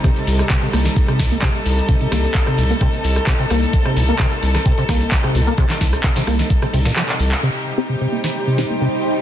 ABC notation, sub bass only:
X:1
M:4/4
L:1/8
Q:1/4=130
K:Cdor
V:1 name="Sub bass" clef=bass
z C,, z C,, z C,, z C,, | z C,, z C,, z C,, z C,, | z C,, z C,, z C,, z C,, | z C,, z C,, z C,, z C,, |
z8 |]